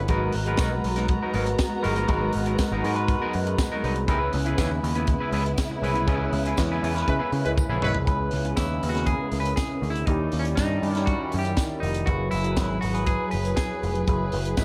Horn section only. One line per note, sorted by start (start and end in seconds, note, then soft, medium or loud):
7.07 7.15 G#3 medium
7.07 7.15 E4 medium
7.07 7.15 B4 medium
7.44 7.53 G#3 medium
7.44 7.52 E4 medium
7.44 7.52 B4 medium
7.81 7.97 G#3 medium
7.81 7.98 E4 medium
7.81 7.97 B4 loud
14.57 14.65 G#3 medium
14.57 14.65 E4 medium
14.57 14.65 B4 medium